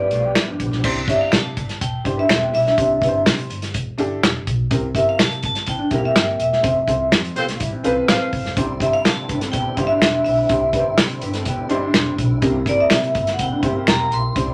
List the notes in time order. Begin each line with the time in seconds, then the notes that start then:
Already playing: G1 G2 F3 B3 F4 G4 B4 D5
0.00 G3 E4
0.11 B1 A3 F4, closed hi-hat
0.24 B3 G4
0.35 G3 E4, finger snap, snare, closed hi-hat
0.47 G1 F3 D4
0.60 A#1, kick, closed hi-hat
0.71 B1, snare
0.83 C2 C3 D4 E4 G4 C5, kick, crash
1.08 G1 D4 E4 G4 C#5 E5, kick, closed hi-hat
1.15 D5
1.21 F5
1.32 C3 A5, finger snap, snare, closed hi-hat
1.57 G1, kick, closed hi-hat
1.69 snare, closed hi-hat
1.81 E1 G5, kick, closed hi-hat
2.04 G1 D4 E4 G4 C5, kick, closed hi-hat
2.17 D4 B4 E5
2.29 E1 C4 A4, finger snap, snare, closed hi-hat
2.42 B3 G4
2.53 B1 G3 E4 E5, open hi-hat
2.65 D4, snare
2.77 C2 C3 D4 E4 G4 C5, kick, closed hi-hat
3.01 G1 D4 E4 G4 B4, kick, closed hi-hat
3.09 C5
3.26 C3, finger snap, snare, closed hi-hat
3.39 closed hi-hat
3.50 G1, closed hi-hat
3.62 snare, closed hi-hat
3.74 E1, kick, closed hi-hat
3.98 G1 D4 E4 G4 A4, closed hi-hat
4.23 E1, finger snap, snare, closed hi-hat
4.47 B1, kick, closed hi-hat
4.70 C2 C3 C4 E4 G4 A#4, kick, closed hi-hat
4.95 G1 C4 E4 G4 A#4 E5, kick, closed hi-hat
5.09 F5
5.19 C3 A5, finger snap, snare, closed hi-hat
5.31 closed hi-hat
5.43 G1 A5, kick, closed hi-hat
5.55 snare, closed hi-hat
5.66 E3 C4 G5, kick, closed hi-hat
5.79 D4, muted upright bass stroke
5.91 E1 G3 C4 E4 G4 A#4, kick, closed hi-hat
5.98 F5
6.03 A#3 G4 E5
6.16 G1, finger snap, snare, closed hi-hat
6.39 E1 E5, closed hi-hat
6.53 snare
6.62 F1 C4 F4 A4 C5, kick, closed hi-hat
6.87 C2 C4 F4 A4 C5, kick, closed hi-hat
7.11 F2, finger snap, snare, closed hi-hat
7.25 closed hi-hat
7.36 C2 B3 F4 G4 A4 C5, closed hi-hat
7.48 A3 F4, snare, closed hi-hat
7.60 A1 G3 E4, kick, closed hi-hat
7.72 E3 C4
7.84 C2 C4 F4 A4 B4 C5 F5, closed hi-hat
8.08 A1 A4 C5 F5, finger snap, snare, closed hi-hat
8.33 G1, kick, open hi-hat
8.44 F1, snare
8.56 C2 C3 D3 C4 D4 E4 G4 C5, kick, closed hi-hat
8.80 G1 D4 E4 G4 C5 E5, kick, closed hi-hat
8.93 F5
9.04 C3 A5, finger snap, snare, closed hi-hat
9.29 G1 D4 B4, kick, closed hi-hat
9.41 C4 A4, snare, closed hi-hat
9.52 E1 B3 G4 G5, kick, closed hi-hat
9.77 G1 G3 D4 E4 G4 C5, kick, closed hi-hat
9.82 F5
9.87 D4 E5
10.01 E1, finger snap, snare, closed hi-hat
10.25 B1 E5, open hi-hat
10.49 C2 C3 D4 E4 G4 C5, kick, closed hi-hat
10.72 G1 D4 E4 G4 B4, kick, closed hi-hat
10.80 C5
10.97 C3, finger snap, snare, closed hi-hat
11.09 closed hi-hat
11.22 G1 D4 B4, closed hi-hat
11.33 C4 A4, snare, closed hi-hat
11.45 E1 B3 G4, kick, closed hi-hat
11.69 G1 G3 D4 D#4 E4 G4 C5, closed hi-hat
11.75 E4
11.83 D4
11.94 E1, finger snap, snare, closed hi-hat
12.18 B1, kick, closed hi-hat
12.41 C2 C3 A#3 C4 E4 G4 A#4, kick, closed hi-hat
12.66 G1 C4 E4 G4 A#4 D5, kick, closed hi-hat
12.80 E5
12.90 C3, finger snap, snare, closed hi-hat
13.03 closed hi-hat
13.15 G1, kick, closed hi-hat
13.27 snare, closed hi-hat
13.33 F#5
13.39 E1 E3 C4 G5, kick, closed hi-hat
13.52 D4
13.62 G1 G3 C4 E4 G4 C5, kick, closed hi-hat
13.76 A#3 G4
13.87 E1 A#5, finger snap, snare, closed hi-hat
14.11 B1 C6, closed hi-hat
14.35 C2 C3 D3 C4 D4 E4 G4 C5, kick, closed hi-hat